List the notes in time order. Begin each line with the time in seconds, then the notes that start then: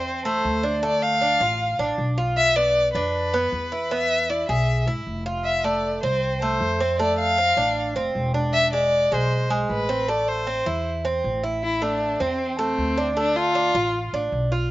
Already playing: E2 C4 C5
0.25 A3 C5
0.45 D2
0.63 D4
0.83 A3 D5
1.02 F5
1.21 D4
1.40 A1 F4
1.79 A1 D4
1.98 B1
2.18 F4
2.37 E5
2.56 B3 D5
2.94 F2 D4 B4
3.34 B3
3.52 E2
3.72 E4
3.91 B3 E5
4.30 E4 D5
4.49 B1 G#4 E5
4.87 G#1 E4
5.07 F1
5.26 F4
5.44 E5
5.64 A3 D5
6.03 C2 C4 C5
6.42 A3 C5
6.60 F2
6.80 C4
7.00 A3 D5
7.19 F5
7.38 C4
7.57 A1 D4
7.96 F1 C4
8.15 E1
8.34 D4
8.54 E5
8.73 G#3 D5
9.12 B1 G#3 C5
9.50 G#3
9.69 A1 B4
9.89 C4
10.08 A3 D5
10.29 C5
10.47 C4
10.66 E2 E4
11.05 C4
11.24 A1
11.43 E4
11.63 E4
11.82 A3 D4
12.20 E2 C4
12.59 A3 C4
12.78 D2
12.97 D4
13.17 A3 D4
13.36 F4
13.55 D4
13.75 A1 F4
14.13 A1 D4
14.32 B1
14.52 F4